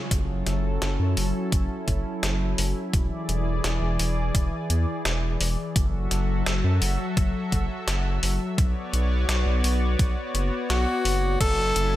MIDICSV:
0, 0, Header, 1, 5, 480
1, 0, Start_track
1, 0, Key_signature, 3, "minor"
1, 0, Tempo, 705882
1, 76, Time_signature, 4, 2, 24, 8
1, 8133, End_track
2, 0, Start_track
2, 0, Title_t, "Tenor saxophone"
2, 0, Program_c, 0, 66
2, 7276, Note_on_c, 0, 66, 96
2, 7729, Note_off_c, 0, 66, 0
2, 7756, Note_on_c, 0, 69, 108
2, 8133, Note_off_c, 0, 69, 0
2, 8133, End_track
3, 0, Start_track
3, 0, Title_t, "Analog synth pad"
3, 0, Program_c, 1, 89
3, 76, Note_on_c, 1, 54, 80
3, 76, Note_on_c, 1, 61, 75
3, 76, Note_on_c, 1, 64, 73
3, 77, Note_on_c, 1, 69, 87
3, 1977, Note_off_c, 1, 54, 0
3, 1977, Note_off_c, 1, 61, 0
3, 1977, Note_off_c, 1, 69, 0
3, 1997, Note_on_c, 1, 74, 91
3, 1998, Note_on_c, 1, 52, 81
3, 1998, Note_on_c, 1, 68, 77
3, 3889, Note_off_c, 1, 64, 0
3, 3897, Note_off_c, 1, 74, 0
3, 3898, Note_off_c, 1, 52, 0
3, 3898, Note_off_c, 1, 68, 0
3, 3915, Note_on_c, 1, 66, 75
3, 3915, Note_on_c, 1, 69, 74
3, 3915, Note_on_c, 1, 76, 90
3, 3916, Note_on_c, 1, 54, 83
3, 5816, Note_off_c, 1, 66, 0
3, 5816, Note_off_c, 1, 69, 0
3, 5816, Note_off_c, 1, 76, 0
3, 5817, Note_off_c, 1, 54, 0
3, 5836, Note_on_c, 1, 59, 85
3, 5836, Note_on_c, 1, 73, 75
3, 5836, Note_on_c, 1, 74, 92
3, 5837, Note_on_c, 1, 66, 76
3, 7737, Note_off_c, 1, 59, 0
3, 7737, Note_off_c, 1, 66, 0
3, 7737, Note_off_c, 1, 73, 0
3, 7737, Note_off_c, 1, 74, 0
3, 7757, Note_on_c, 1, 54, 82
3, 7757, Note_on_c, 1, 64, 75
3, 7757, Note_on_c, 1, 69, 92
3, 7758, Note_on_c, 1, 61, 78
3, 8133, Note_off_c, 1, 54, 0
3, 8133, Note_off_c, 1, 61, 0
3, 8133, Note_off_c, 1, 64, 0
3, 8133, Note_off_c, 1, 69, 0
3, 8133, End_track
4, 0, Start_track
4, 0, Title_t, "Analog synth bass"
4, 0, Program_c, 2, 38
4, 76, Note_on_c, 2, 30, 91
4, 292, Note_off_c, 2, 30, 0
4, 316, Note_on_c, 2, 30, 99
4, 532, Note_off_c, 2, 30, 0
4, 556, Note_on_c, 2, 30, 97
4, 664, Note_off_c, 2, 30, 0
4, 676, Note_on_c, 2, 42, 93
4, 784, Note_off_c, 2, 42, 0
4, 796, Note_on_c, 2, 30, 93
4, 904, Note_off_c, 2, 30, 0
4, 1036, Note_on_c, 2, 30, 79
4, 1144, Note_off_c, 2, 30, 0
4, 1276, Note_on_c, 2, 30, 96
4, 1384, Note_off_c, 2, 30, 0
4, 1516, Note_on_c, 2, 30, 89
4, 1732, Note_off_c, 2, 30, 0
4, 1756, Note_on_c, 2, 30, 85
4, 1864, Note_off_c, 2, 30, 0
4, 1996, Note_on_c, 2, 28, 89
4, 2104, Note_off_c, 2, 28, 0
4, 2235, Note_on_c, 2, 28, 84
4, 2451, Note_off_c, 2, 28, 0
4, 2475, Note_on_c, 2, 28, 89
4, 2583, Note_off_c, 2, 28, 0
4, 2594, Note_on_c, 2, 28, 101
4, 2703, Note_off_c, 2, 28, 0
4, 2715, Note_on_c, 2, 28, 89
4, 2931, Note_off_c, 2, 28, 0
4, 2955, Note_on_c, 2, 28, 98
4, 3064, Note_off_c, 2, 28, 0
4, 3195, Note_on_c, 2, 40, 80
4, 3303, Note_off_c, 2, 40, 0
4, 3435, Note_on_c, 2, 28, 81
4, 3651, Note_off_c, 2, 28, 0
4, 3675, Note_on_c, 2, 28, 94
4, 3783, Note_off_c, 2, 28, 0
4, 3915, Note_on_c, 2, 30, 99
4, 4131, Note_off_c, 2, 30, 0
4, 4155, Note_on_c, 2, 30, 98
4, 4371, Note_off_c, 2, 30, 0
4, 4396, Note_on_c, 2, 30, 94
4, 4504, Note_off_c, 2, 30, 0
4, 4515, Note_on_c, 2, 42, 101
4, 4623, Note_off_c, 2, 42, 0
4, 4635, Note_on_c, 2, 30, 96
4, 4743, Note_off_c, 2, 30, 0
4, 4876, Note_on_c, 2, 30, 81
4, 4984, Note_off_c, 2, 30, 0
4, 5115, Note_on_c, 2, 30, 96
4, 5223, Note_off_c, 2, 30, 0
4, 5354, Note_on_c, 2, 30, 91
4, 5571, Note_off_c, 2, 30, 0
4, 5594, Note_on_c, 2, 30, 86
4, 5703, Note_off_c, 2, 30, 0
4, 5835, Note_on_c, 2, 35, 90
4, 5944, Note_off_c, 2, 35, 0
4, 6075, Note_on_c, 2, 35, 82
4, 6291, Note_off_c, 2, 35, 0
4, 6315, Note_on_c, 2, 35, 93
4, 6423, Note_off_c, 2, 35, 0
4, 6435, Note_on_c, 2, 35, 102
4, 6543, Note_off_c, 2, 35, 0
4, 6555, Note_on_c, 2, 35, 92
4, 6771, Note_off_c, 2, 35, 0
4, 6795, Note_on_c, 2, 35, 97
4, 6903, Note_off_c, 2, 35, 0
4, 7035, Note_on_c, 2, 30, 82
4, 7143, Note_off_c, 2, 30, 0
4, 7275, Note_on_c, 2, 35, 96
4, 7384, Note_off_c, 2, 35, 0
4, 7515, Note_on_c, 2, 30, 102
4, 7731, Note_off_c, 2, 30, 0
4, 7756, Note_on_c, 2, 30, 95
4, 7972, Note_off_c, 2, 30, 0
4, 7995, Note_on_c, 2, 30, 98
4, 8133, Note_off_c, 2, 30, 0
4, 8133, End_track
5, 0, Start_track
5, 0, Title_t, "Drums"
5, 76, Note_on_c, 9, 36, 110
5, 76, Note_on_c, 9, 42, 95
5, 144, Note_off_c, 9, 36, 0
5, 144, Note_off_c, 9, 42, 0
5, 316, Note_on_c, 9, 38, 36
5, 316, Note_on_c, 9, 42, 67
5, 384, Note_off_c, 9, 38, 0
5, 384, Note_off_c, 9, 42, 0
5, 556, Note_on_c, 9, 38, 120
5, 556, Note_on_c, 9, 42, 92
5, 624, Note_off_c, 9, 38, 0
5, 624, Note_off_c, 9, 42, 0
5, 796, Note_on_c, 9, 46, 73
5, 864, Note_off_c, 9, 46, 0
5, 1036, Note_on_c, 9, 36, 113
5, 1037, Note_on_c, 9, 42, 87
5, 1104, Note_off_c, 9, 36, 0
5, 1105, Note_off_c, 9, 42, 0
5, 1276, Note_on_c, 9, 36, 56
5, 1276, Note_on_c, 9, 42, 67
5, 1344, Note_off_c, 9, 36, 0
5, 1344, Note_off_c, 9, 42, 0
5, 1516, Note_on_c, 9, 38, 117
5, 1516, Note_on_c, 9, 42, 90
5, 1584, Note_off_c, 9, 38, 0
5, 1584, Note_off_c, 9, 42, 0
5, 1756, Note_on_c, 9, 46, 76
5, 1824, Note_off_c, 9, 46, 0
5, 1996, Note_on_c, 9, 36, 117
5, 1996, Note_on_c, 9, 42, 95
5, 2064, Note_off_c, 9, 36, 0
5, 2064, Note_off_c, 9, 42, 0
5, 2236, Note_on_c, 9, 42, 66
5, 2304, Note_off_c, 9, 42, 0
5, 2476, Note_on_c, 9, 38, 122
5, 2476, Note_on_c, 9, 42, 97
5, 2544, Note_off_c, 9, 38, 0
5, 2544, Note_off_c, 9, 42, 0
5, 2716, Note_on_c, 9, 46, 71
5, 2784, Note_off_c, 9, 46, 0
5, 2956, Note_on_c, 9, 36, 121
5, 2956, Note_on_c, 9, 42, 89
5, 3024, Note_off_c, 9, 36, 0
5, 3024, Note_off_c, 9, 42, 0
5, 3196, Note_on_c, 9, 42, 64
5, 3264, Note_off_c, 9, 42, 0
5, 3436, Note_on_c, 9, 38, 121
5, 3436, Note_on_c, 9, 42, 91
5, 3504, Note_off_c, 9, 38, 0
5, 3504, Note_off_c, 9, 42, 0
5, 3676, Note_on_c, 9, 46, 74
5, 3744, Note_off_c, 9, 46, 0
5, 3915, Note_on_c, 9, 36, 125
5, 3916, Note_on_c, 9, 42, 90
5, 3983, Note_off_c, 9, 36, 0
5, 3984, Note_off_c, 9, 42, 0
5, 4156, Note_on_c, 9, 38, 39
5, 4156, Note_on_c, 9, 42, 66
5, 4224, Note_off_c, 9, 38, 0
5, 4224, Note_off_c, 9, 42, 0
5, 4396, Note_on_c, 9, 38, 127
5, 4396, Note_on_c, 9, 42, 94
5, 4464, Note_off_c, 9, 38, 0
5, 4464, Note_off_c, 9, 42, 0
5, 4636, Note_on_c, 9, 46, 72
5, 4704, Note_off_c, 9, 46, 0
5, 4876, Note_on_c, 9, 36, 125
5, 4876, Note_on_c, 9, 42, 88
5, 4944, Note_off_c, 9, 36, 0
5, 4944, Note_off_c, 9, 42, 0
5, 5116, Note_on_c, 9, 36, 62
5, 5116, Note_on_c, 9, 42, 68
5, 5184, Note_off_c, 9, 36, 0
5, 5184, Note_off_c, 9, 42, 0
5, 5356, Note_on_c, 9, 38, 126
5, 5356, Note_on_c, 9, 42, 93
5, 5424, Note_off_c, 9, 38, 0
5, 5424, Note_off_c, 9, 42, 0
5, 5596, Note_on_c, 9, 46, 73
5, 5664, Note_off_c, 9, 46, 0
5, 5836, Note_on_c, 9, 36, 122
5, 5836, Note_on_c, 9, 42, 91
5, 5904, Note_off_c, 9, 36, 0
5, 5904, Note_off_c, 9, 42, 0
5, 6076, Note_on_c, 9, 42, 66
5, 6144, Note_off_c, 9, 42, 0
5, 6316, Note_on_c, 9, 38, 119
5, 6316, Note_on_c, 9, 42, 91
5, 6384, Note_off_c, 9, 38, 0
5, 6384, Note_off_c, 9, 42, 0
5, 6556, Note_on_c, 9, 46, 74
5, 6624, Note_off_c, 9, 46, 0
5, 6796, Note_on_c, 9, 36, 125
5, 6796, Note_on_c, 9, 42, 85
5, 6864, Note_off_c, 9, 36, 0
5, 6864, Note_off_c, 9, 42, 0
5, 7036, Note_on_c, 9, 42, 63
5, 7104, Note_off_c, 9, 42, 0
5, 7276, Note_on_c, 9, 38, 124
5, 7276, Note_on_c, 9, 42, 92
5, 7344, Note_off_c, 9, 38, 0
5, 7344, Note_off_c, 9, 42, 0
5, 7516, Note_on_c, 9, 46, 76
5, 7584, Note_off_c, 9, 46, 0
5, 7756, Note_on_c, 9, 36, 120
5, 7756, Note_on_c, 9, 42, 97
5, 7756, Note_on_c, 9, 49, 103
5, 7824, Note_off_c, 9, 36, 0
5, 7824, Note_off_c, 9, 42, 0
5, 7824, Note_off_c, 9, 49, 0
5, 7996, Note_on_c, 9, 42, 70
5, 8064, Note_off_c, 9, 42, 0
5, 8133, End_track
0, 0, End_of_file